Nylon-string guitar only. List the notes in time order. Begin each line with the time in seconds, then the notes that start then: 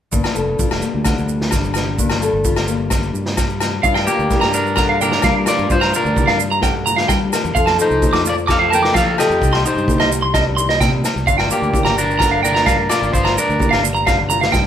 0.11 G2 A#3
0.36 A4
0.59 G3 F4
0.83 A#3
1.05 D3
1.52 G3
1.98 G2 A#3
2.22 A4
2.45 G3 F4
2.68 A#3
2.91 muted nylon-string guitar stroke
3.37 G3
3.84 G2 F4
4.08 F4
4.30 G3
4.77 D3
5.01 F4
5.23 G3
5.48 A#4
5.71 G2 F4
5.94 F4
6.17 G3
6.62 D3
6.87 F4
7.09 G3
7.34 A#4
7.56 F3 A4
7.79 A4
8.02 C4
8.48 C3
8.73 A4
8.94 C4
9.19 A4
9.41 C3 D#4
9.66 G4
9.87 G3
10.34 G2
10.58 D#4
10.80 A#2
11.04 muted nylon-string guitar stroke
11.26 G2 F4
11.51 F4
11.74 muted nylon-string guitar stroke
12.20 D3
12.54 F4
12.91 A#4
13.13 G2 F4
13.37 muted nylon-string guitar stroke
13.60 G3
14.07 D3
14.31 F4
14.53 muted nylon-string guitar stroke